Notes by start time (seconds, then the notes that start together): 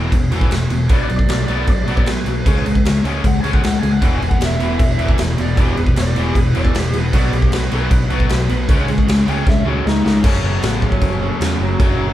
Already playing: E2 B2 E3
0.12 E1 E2 B2, kick, crash
0.30 E1 E2 B2 E3, crash
0.41 kick
0.50 E1 E2 B2, snare, crash
0.70 E1 E2 B2, crash
0.89 B1 B2 F#3 B3 D5, kick, crash
1.05 D5
1.09 B1 B2 F#3, crash
1.17 D5, kick
1.29 B1 B2 F#3 D5, snare, crash
1.43 D5
1.48 B1 B2 F#3 B3, crash
1.57 D5
1.67 B1 B2 F#3 D5, kick, crash
1.83 D5
1.88 B1 B2 F#3 B3, crash
1.97 D5, kick
2.06 B1 B2 F#3 B4, snare, crash
2.26 B1 B2 F#3, crash
2.45 C#2 C#3 G#3 C#4, kick, crash
2.65 C#2 C#3 G#3, crash
2.75 kick
2.85 C#2 C#3 G#3, snare, crash
3.04 C#2 C#3 G#3 C#4, crash
3.24 C#2 C#3 G#3 F#5, kick, crash
3.40 C#2 C#3 G#3 C#4 G#5, crash
3.53 F#5, kick
3.63 C#2 C#3 G#3 F#5, snare, crash
3.79 C#2 C#3 G#3 G#5, crash
3.92 F#5
4.02 E1 E2 B2 E3 F#5, kick, crash
4.18 E2 B2 G#5
4.22 E1, crash
4.30 F#5, kick
4.41 E1 E2 B2 E5, snare, crash
4.59 E1 E2 B2 E3, crash
4.79 E1 E2 B2, kick, crash
4.98 E1 E2 B2 E3, crash
5.09 kick
5.18 E1 E2 B2, snare, crash
5.37 E1 E2 B2 E3 D5, crash
5.57 E1 E2 B2 E3 G4, kick, crash
5.76 E1 E2 B2 B4, crash
5.87 kick
5.96 E1 E2 B2 D5, snare, crash
6.16 E1 E2 B2 E3 G4, crash
6.35 E1 E2 B2 B4, kick, crash
6.55 E1 E2 B2 E3 D5, crash
6.65 kick
6.74 E1 E2 B2 G4, snare, crash
6.93 E1 E2 B2 E3 B4, crash
7.13 B1 B2 F#3 B3 D5, kick, crash
7.32 B1 B2 F#3 G4, crash
7.42 kick
7.52 B1 B2 F#3 B4, snare, crash
7.71 B1 B2 F#3 B3 B4, crash
7.91 B1 B2 F#3, kick, crash
8.10 B1 B2 F#3 B3, crash
8.20 kick
8.29 B1 B2 F#3, snare, crash
8.49 B1 B2 F#3 B3, crash
8.69 C#2 C#3 G#3 C#4, kick, crash
8.87 C#2 C#3 G#3, crash
8.98 kick
9.07 C#2 C#3 G#3, snare, crash
9.26 C#2 C#3 G#3 C#4 G5, crash
9.46 C#2 C#3 G#3 E5, kick, snare
9.66 C#2 C#3 F#3 G#3 C#4 F#4 G5
9.85 C#2 C#3 G#3 D#4 D#5 E5, snare
10.04 C#2 C#3 G#3 C#4 F#5, snare
10.24 F#1 F#2 C#3 F#3 C#4 C#5, kick, crash
10.44 F#1 B3 B4
10.62 A1, snare, crash
10.82 C#4 C#5, kick
10.92 kick
11.01 F#1, kick, crash
11.22 F#2 C#3 F#3
11.40 E2 F#2 C#3 F#3 C#4 C#5, snare, crash
11.60 F#1 F#3 F#4
11.80 F#1 F#2 C#3 F#3, kick, crash
11.99 F#1